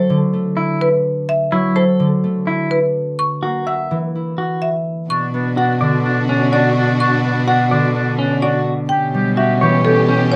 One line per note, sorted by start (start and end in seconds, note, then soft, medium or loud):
0.00 1.31 F#3 medium
0.00 0.32 A3 medium
0.00 0.16 A4 medium
0.00 0.17 C5 medium
0.10 1.31 D3 medium
0.33 2.23 A3 soft
0.57 0.88 E4 medium
0.81 1.12 B4 medium
1.29 1.60 E5 medium
1.52 5.42 F#3 medium
1.52 1.83 E4 medium
1.76 2.07 A4 medium
1.76 2.07 C5 medium
2.00 3.21 D3 medium
2.24 3.21 A3 soft
2.47 2.78 E4 medium
2.71 3.02 B4 medium
3.19 3.50 C#6 medium
3.43 5.11 A#3 soft
3.43 3.74 F#4 medium
3.67 3.98 E5 soft
3.67 3.98 F#5 medium
3.91 5.12 E3 medium
4.15 5.12 E4 soft
4.38 4.69 F#4 soft
4.62 4.93 E5 medium
5.09 8.77 B2 medium
5.09 8.62 D4 medium
5.09 5.26 D4 soft
5.09 8.62 F#4 medium
5.09 5.41 C#6 medium
5.34 7.23 B3 soft
5.34 5.50 D4 soft
5.57 5.74 D4 soft
5.57 5.88 F#4 soft
5.57 5.88 F#5 medium
5.81 7.70 D3 medium
5.81 5.98 D4 medium
5.81 6.12 D5 medium
6.05 6.21 D4 medium
6.05 6.51 D4 soft
6.29 6.60 C#4 medium
6.29 6.45 D4 medium
6.52 6.69 D4 medium
6.52 7.94 D4 medium
6.52 6.83 F#4 soft
6.52 6.83 D5 medium
6.77 6.93 D4 medium
7.00 7.17 D4 medium
7.00 7.31 C#6 medium
7.24 8.92 B3 soft
7.24 7.41 D4 medium
7.48 7.64 D4 medium
7.48 7.79 F#4 medium
7.48 7.79 F#5 medium
7.71 8.92 D3 medium
7.71 7.88 D4 medium
7.71 8.02 D5 medium
7.95 8.41 D4 soft
7.95 8.12 D4 soft
8.19 8.50 C#4 medium
8.19 8.36 D4 soft
8.42 8.92 D4 medium
8.42 8.60 D4 soft
8.42 8.74 F#4 soft
8.42 8.74 D5 medium
8.89 10.36 B2 medium
8.89 10.36 C#4 medium
8.89 10.36 G4 medium
8.89 9.07 G4 soft
8.89 9.21 G5 medium
9.14 10.36 G3 medium
9.14 9.31 G4 soft
9.37 9.69 F#4 medium
9.37 9.54 G4 soft
9.37 9.69 E5 medium
9.61 10.36 E3 medium
9.61 9.79 G4 medium
9.61 9.93 C#5 medium
9.85 10.32 C#4 soft
9.85 10.02 G4 medium
9.85 10.16 A4 medium
10.09 10.36 C#4 soft
10.09 10.26 G4 medium
10.32 10.36 C#5 medium